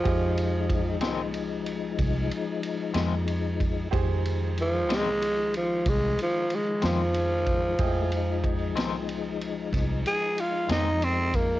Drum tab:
RD |xxxxxxxxxxxx|xxxxxxxxxxxx|xxxxxxxxxxxx|
SD |---o-----o--|---o-----o--|---o--o--o--|
BD |o-o---o----o|o-----o----o|o-o---o----o|